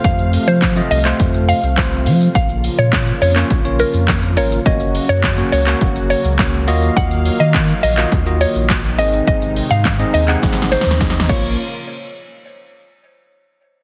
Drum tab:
CC |------------------------------------------------|------------------------------------------------|------------------------------------------------|------------------------------------------------|
HH |x-----o-----x-----o-----x-----o-----x-----o-----|x-----o-----x-----o-----x-----o-----x-----o-----|x-----o-----x-----o-----x-----o-----x-----o-----|x-----o-----x-----o-----x-----o-----x-----o-----|
SH |x--x--x--x--x--x--x--x--x--x--x--x--x--x--x--x--|x--x--x--x--x--x--x--x--x--x--x--x--x--x--x--x--|x--x--x--x--x--x--x--x--x--x--x--x--x--x--x--x--|x--x--x--x--x--x--x--x--x--x--x--x--x--x--x--x--|
CP |------------x--------x--------------x-----------|------------x--------x--------------x-----------|------------x--------x--------------x-----------|------------x--------x--------------x-----------|
SD |------------o-----------------------o-----------|------------o-----------------------o-----------|------------o-----------------------o-----------|------------o-----------------------o-----------|
BD |o-----------o-----------o-----------o-----------|o-----------o-----------o-----------o-----------|o-----------o-----------o-----------o-----------|o-----------o-----------o-----------o-----------|

CC |------------------------------------------x-----|------------------------------------------------|
HH |x-----o-----x-----o-----x-----o-----x-----------|------------------------------------------------|
SH |x--x--x--x--x--x--x--x--x--x--x--x--x--x--------|------------------------------------------------|
CP |------------x--------x--------------------------|------------------------------------------------|
SD |------------o-----------o-o-o-o-o-o-o-o-o-------|------------------------------------------------|
BD |o-----------o-----------o-----------o-----o-----|------------------------------------------------|